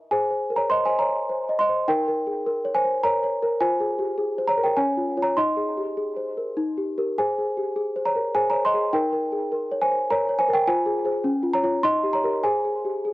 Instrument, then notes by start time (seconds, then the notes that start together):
celesta
Already playing: D#4 A#4 D#5 G5
0.11 G#4 C5 G#5
0.31 C5
0.50 A#4
0.56 C#5 A#5
0.70 C5 D#5 C6
0.85 C5 D#5 G#5
0.99 C#5 A#5
1.29 C5
1.49 D#5
1.59 D#5 C6
1.69 C5
1.88 D#4 A#4 G5
2.08 A#4
2.27 G#4
2.46 A#4
2.65 C#5
2.74 C5 G#5
2.84 C5
3.03 A#4 C#5 A#5
3.23 C#5
3.42 A#4
3.60 F4 C5 G#5
3.80 G#4
3.99 G4
4.18 G#4
4.38 C5
4.47 C#5 A#5
4.57 A#4
4.63 A#4 G5
4.77 C#4 C#5 G#5
4.97 F4
5.17 F4 C#5
5.22 C#5 A#5
5.37 D#4 D#5 C6
5.57 G#4
5.77 G4
5.97 G#4
6.17 C5
6.37 A#4
6.57 D#4
6.77 G4
6.98 G4 A#4
7.18 G#4 C5 G#5
7.38 G#4
7.57 G4
7.76 G#4
7.96 C5
8.05 C#5 A#5
8.16 A#4
8.35 G#4 C5 G#5
8.50 C#5 A#5
8.54 C5
8.65 D#5 C6
8.74 G#4
8.93 D#4 A#4 G5
9.13 A#4
9.32 G#4
9.52 A#4
9.72 C#5
9.82 C5 G#5
9.91 C5
10.11 A#4 C#5 A#5
10.29 C#5
10.39 C5 G#5
10.49 A#4
10.54 A#4 G5
10.68 F4 C5 G#5
10.86 G#4
11.05 G#4 C5
11.24 C#4
11.43 F4
11.53 C#5 A#5
11.63 F4 C#5
11.83 D#4 D#5 C6
12.03 G4
12.13 C#5 A#5
12.24 G4 A#4
12.43 G#4 C5 G#5
12.65 G#4
12.85 G4
13.05 G#4